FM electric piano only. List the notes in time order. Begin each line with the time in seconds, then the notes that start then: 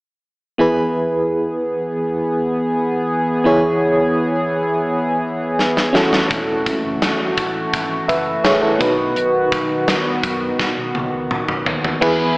0.58 E3 B3 E4 G#4 B4
3.44 E3 B3 E4 G#4 C#5
5.93 E3 C#4 E4 F#4 A4
8.08 B4 E5
8.44 G#4 C#5
8.62 E4 A4
8.79 B2 B3 D#4 F#4 B4
12.01 E3 B3 E4 G#4 B4